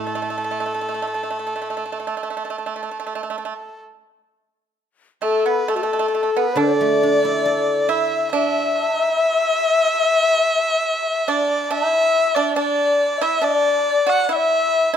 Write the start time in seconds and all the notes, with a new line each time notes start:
Already playing: A2 F#3 A4
0.07 A3
0.15 A3
0.22 A3
0.30 A3
0.38 A3
0.44 A3
0.51 A3
0.60 A3
0.66 A3
0.74 A3
0.81 A3
0.89 A3
0.94 A3
1.02 A3
1.07 A3
1.14 A3
1.23 A3
1.30 A3
1.39 A3
1.47 A3
1.56 A3
1.62 A3
1.70 A3
1.77 A3
1.92 A3
2.00 A3
2.07 A3
2.17 A3
2.23 A3
2.30 A3
2.37 A3
2.45 A3
2.50 A3
2.58 A3
2.66 A3
2.76 A3
2.83 A3
2.91 A3
3.00 A3
3.07 A3
3.15 A3
3.23 A3
3.30 A3
3.38 A3
3.45 A3
5.22 A3 A4
5.46 B3 B4
5.67 A3 A4
5.75 A3 F#4
5.82 A3 A4
5.93 A3
5.99 A3
6.08 A3
6.15 A3
6.23 A3
6.37 B3 B4
6.56 D3 D4 D5
6.81 A3
7.03 D4
7.25 E4
7.45 A4
7.89 E4 E5
8.32 D4 E5
8.86 D#4
9.19 E4
11.28 D4 D5
11.71 D4 E5
11.77 D5
11.84 E5
11.88 E4
12.35 D4 D5
12.55 D4 D5
13.18 E4 E5
13.22 E5
13.41 D4 D5
14.07 F#4 F#5
14.24 F#5
14.29 E4 E5
14.36 D5 E5
14.93 E4 E5